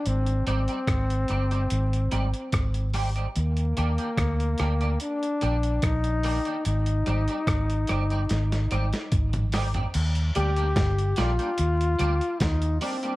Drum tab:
CC |----------------|----------------|----------------|x---------------|
HH |xxxxxxxxxxxxxxox|xxxxxxxxxxxxxxox|xxxxxxxxxxxxxxox|xxxxxxxxxxxxxxox|
SD |----r-------r---|----r-r-----r---|----r-r-oo-o--o-|----o-o-----o---|
T2 |----------------|----------------|-------------o--|----------------|
FT |----------------|----------------|---------------o|----------------|
BD |----o-------o---|----o-------o---|----o-------o---|----o-------o---|